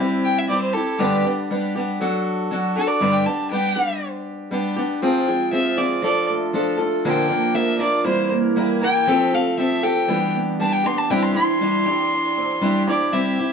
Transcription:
0.00 C3 G3 C4 E4 G4
0.24 G5
0.38 E5
0.49 G3 C4 E4 G4 D5
0.61 C5
0.74 C4 E4 G4 A4
0.99 G2 D3 G3 B3 D4 G4
1.25 G3 B3 D4 G4
1.50 G3 B3 D4 G4
1.75 G3 B3 D4 G4
2.01 F#3 D4 F#4 A4
2.51 F#3 D4 F#4 A4
2.76 D4 F#4 A4
2.88 D5
3.00 G2 D3 G3 B3 D4 G4
3.13 G5
3.26 G3 B3 D4 G4 A5
3.51 G3 B3 D4 G4 G5
3.76 G3 B3 D4 G4
4.51 G3 B3 D4 G4
4.76 G3 B3 D4 G4
5.02 F3 C4 F4 G#4 G5
5.27 G#3 C4 F4 G#4
5.52 F3 C4 F4 G#4 E5
5.77 C4 F4 G#4 D5
6.02 F3 D4 F4 A4 D5
6.29 A3
6.53 F3 D4 F4 A4
6.77 A3 D4 F4 A4
7.05 A#2 D3 F3 A#3 D4 A#4 G5
7.28 F3 A#3 D4 A#4
7.54 F3 A#3 D4 A#4 E5
7.78 F3 A#3 D4 F4 A#4 D5
8.04 C3 E3 G3 A#3 E4 A#4 C5
8.32 A#3
8.56 G3 A#3 E4 G4 A#4
8.81 A#3 E4 A#4 G5
9.07 F3 C4 G4 A4
9.33 A3 C4 G4 A4 F5
9.58 F3 C4 G4 A4 E5
9.83 C4 G4 A4 G5
10.08 E3 G3 B3 D4 G4
10.35 B3
10.60 G3 B3 D4 G4 A5
10.73 G5
10.84 B3 D4 G4 C6
10.98 A5
11.10 C3 E3 G3 D4 E4 G4 G5
11.22 C6
11.35 C4 D4 E4 G4 C6
11.61 G3 D4 E4 G4
11.86 D4 E4 G4
12.12 D4
12.37 C4
12.61 G3 D4 E4 G4
12.87 C4 D4 E4 G4 D5
13.12 C3 G3 C4 E4 G4 E5
13.39 C4 E4 G4

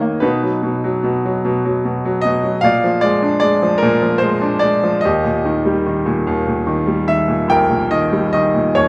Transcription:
Already playing: D#3 C#5 D#5
0.00 A#3
0.20 B2 D#4 B4
0.43 F#3
0.62 B2
0.84 F#3
1.03 B2
1.25 F#3
1.45 B2
1.65 F#3
1.85 B2
2.05 F#3
2.21 B2 D#5
2.44 F#3
2.61 A#2 D5 F5
2.84 F3
3.01 G#3 D5
3.22 D4
3.40 G#3 D5
3.62 F3
3.78 A#4
3.82 A#2
4.02 F3
4.18 C5
4.22 G#3
4.42 D4
4.59 G#3 D5
4.83 F3
5.01 D#5
5.05 D#2 G4
5.24 A#2
5.45 D#3
5.65 G3
5.86 D#3
6.06 A#2
6.27 D#2
6.47 A#2
6.67 D#3
6.87 G3
7.07 D#3 E5
7.28 A#2
7.48 A#1 A#4 G5
7.70 A#2
7.91 D#3 D#5
8.12 G3
8.33 D#3 D#5
8.54 A#2
8.75 D#2 C#5

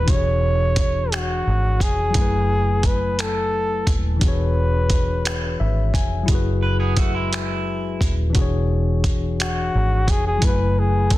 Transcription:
Already playing: B4
0.03 E3 D4
0.08 E1 F#4 G4 C#5, kick, closed hi-hat
0.14 G#4 C#5
0.76 kick, closed hi-hat
1.12 F#4, finger snap, closed hi-hat
1.47 G#1
1.80 F1 G#4, kick, closed hi-hat
2.10 F#3 E4
2.14 F#1 G#5, kick, closed hi-hat
2.18 A3 B4
2.83 B4, kick, closed hi-hat
3.19 A4, finger snap, closed hi-hat
3.87 D#1, kick, closed hi-hat
4.17 E3 D4
4.21 E1 F#4 G#4 B4, kick, closed hi-hat
4.28 C#5
4.90 kick, closed hi-hat
5.25 finger snap, closed hi-hat
5.60 G#1 E5
5.94 F1 G#5, kick, closed hi-hat
6.23 F#3 E4
6.28 F#1 F#4 G#4, kick, closed hi-hat
6.35 B4
6.63 B4
6.80 B3 G#4
6.96 A3 F#4, kick, closed hi-hat
7.14 G#3 E4
7.33 finger snap, closed hi-hat
8.01 D#1, kick, closed hi-hat
8.30 E3 D4
8.35 E1 F#4, kick, closed hi-hat
8.39 G#4 C#5
9.04 kick, closed hi-hat
9.40 F#4, finger snap, closed hi-hat
9.75 G#1
10.08 F1 G#4, kick, closed hi-hat
10.27 G#4
10.38 F#3 E4
10.42 F#1 B4 G#5, kick, closed hi-hat
10.46 A3 B4
10.80 G#4
11.10 A4, kick, closed hi-hat

